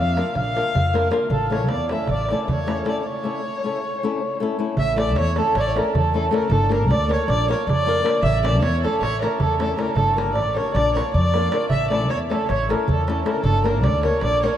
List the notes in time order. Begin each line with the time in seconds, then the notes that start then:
Already playing: F2 F5
0.00 F5
0.16 A#3 D4 F4 A#4, darbuka tek
0.35 A#1 F5, darbuka tek, darbuka dum
0.46 darbuka tek
0.56 A#3 D4 F4 A#4, darbuka tek
0.66 darbuka tek
0.75 F2, darbuka dum
0.93 A#3 D4 F4 A#4, darbuka tek
1.04 darbuka tek
1.11 A#3 D4 F4 A#4, darbuka tek
1.30 A1 A4, darbuka dum
1.50 A3 C#4 E4 A4 C#5, darbuka tek
1.60 darbuka tek
1.69 E2 D5, darbuka tek
1.80 darbuka tek
1.89 A3 C#4 E4 A4 E5, darbuka tek
2.07 A1 D5, darbuka tek, darbuka dum
2.12 D5
2.18 darbuka tek
2.29 A3 C#4 E4 A4 D5, darbuka tek
2.33 D5
2.39 darbuka tek
2.48 E2 C#5, darbuka dum
2.67 A3 C#4 E4 A4, darbuka tek
2.78 darbuka tek
2.85 A3 C#4 E4 A4 D5, darbuka tek
2.89 D5
3.05 C#5
3.23 A3 C#4 E4 A4
3.64 A3 C#4 E4 A4
4.03 A3 C#4 E4 A4
4.40 A3 C#4 E4 A4
4.59 A3 C#4 E4 A4
4.77 A1 E5, darbuka dum
4.96 A3 C#4 E4 A4 D5, darbuka tek
5.07 darbuka tek
5.16 E2 C#5, darbuka tek
5.36 A3 C#4 E4 A4, darbuka tek
5.55 A1 C#5, darbuka tek
5.60 D5
5.66 C#5, darbuka tek
5.75 A3 C#4 E4 A4 A#4, darbuka tek
5.95 E2 A4, darbuka dum
6.06 darbuka tek
6.14 A3 C#4 E4 A4
6.25 darbuka tek
6.31 A3 C#4 E4 A4 A#4, darbuka tek
6.43 darbuka tek
6.50 G1 A4, darbuka dum
6.69 A#3 D4 G4 A#4, darbuka tek
6.74 A#4
6.82 darbuka tek
6.89 D2 D5, darbuka tek
7.01 darbuka tek
7.07 A#3 D4 G4 A#4, darbuka tek
7.12 C#5
7.28 A#1 D5, darbuka tek
7.40 darbuka tek
7.48 A#3 D4 F4 A#4 C#5, darbuka tek
7.67 F2 D5, darbuka dum
7.86 A#3 D4 F4 A#4
7.98 darbuka tek
8.03 A#3 D4 F4 A#4, darbuka tek
8.15 darbuka tek
8.22 A1 E5, darbuka dum
8.43 A3 C#4 E4 A4 D5, darbuka tek
8.54 darbuka tek
8.61 E2 C#5, darbuka tek
8.83 A3 C#4 E4 A4, darbuka tek
9.01 A1 C#5, darbuka tek
9.13 darbuka tek
9.22 A3 C#4 E4 A4 A#4, darbuka tek
9.40 E2 A4, darbuka dum
9.59 A3 C#4 E4 A4, darbuka tek
9.70 darbuka tek
9.77 A3 C#4 E4 A4 A#4, darbuka tek
9.88 darbuka tek
9.96 G1 A4, darbuka dum
10.07 darbuka tek
10.16 A#3 D4 G4 A#4, darbuka tek
10.27 darbuka tek
10.35 A1 D5, darbuka tek
10.47 darbuka tek
10.55 A#3 D4 G4 A#4 C#5, darbuka tek
10.67 darbuka tek
10.73 A#1 D5, darbuka tek, darbuka dum
10.95 A#3 D4 F4 A#4 C#5, darbuka tek
11.05 darbuka tek
11.14 F2 D5, darbuka dum
11.34 A#3 D4 F4 A#4, darbuka tek
11.52 A#3 D4 F4 A#4, darbuka tek
11.70 A1 E5, darbuka dum
11.90 A3 C#4 E4 A4 D5, darbuka tek
12.01 darbuka tek
12.08 E2 C#5, darbuka tek
12.21 darbuka tek
12.30 A3 C#4 E4 A4, darbuka tek
12.49 A1 C#5, darbuka tek
12.60 darbuka tek
12.69 A3 C#4 E4 A4 A#4, darbuka tek
12.88 E2 A4, darbuka dum
13.07 A3 C#4 E4 A4, darbuka tek
13.17 darbuka tek
13.25 A3 C#4 E4 A4 A#4, darbuka tek
13.36 darbuka tek
13.44 G1 A4, darbuka dum
13.64 A#3 D4 G4 A#4, darbuka tek
13.75 darbuka tek
13.82 D2 D5, darbuka tek
13.93 darbuka tek
14.03 A#3 D4 G4 A#4 C#5, darbuka tek
14.21 A#1 D5, darbuka tek
14.33 darbuka tek
14.43 A#3 D4 F4 A#4 C#5, darbuka tek